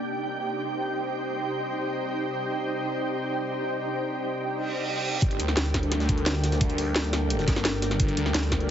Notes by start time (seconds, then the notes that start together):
Already playing: A#3 C4 D#4 G4 D5 D#5 G5
0.00 C5
4.53 reverse cymbal
5.22 G1 G3 D4 A4 A#4, kick, closed hi-hat
5.31 closed hi-hat
5.40 D2, closed hi-hat
5.48 snare
5.57 D2, snare, closed hi-hat
5.66 closed hi-hat
5.74 kick, snare, closed hi-hat
5.83 closed hi-hat
5.92 snare, closed hi-hat
6.00 A#3, snare
6.09 kick, closed hi-hat
6.18 closed hi-hat
6.26 snare, closed hi-hat
6.44 snare, closed hi-hat
6.52 snare, closed hi-hat
6.61 kick, closed hi-hat
6.70 closed hi-hat
6.78 closed hi-hat, open hi-hat
6.96 D2, snare, closed hi-hat
7.04 closed hi-hat
7.13 snare, closed hi-hat
7.30 closed hi-hat
7.39 snare
7.48 G1, kick, snare, closed hi-hat
7.56 snare
7.65 snare, closed hi-hat
7.82 snare, closed hi-hat
7.91 snare, closed hi-hat
8.00 G1, kick, closed hi-hat
8.08 closed hi-hat
8.17 D2, closed hi-hat
8.26 snare
8.34 D2, snare, closed hi-hat
8.43 closed hi-hat
8.52 kick, snare, closed hi-hat
8.60 closed hi-hat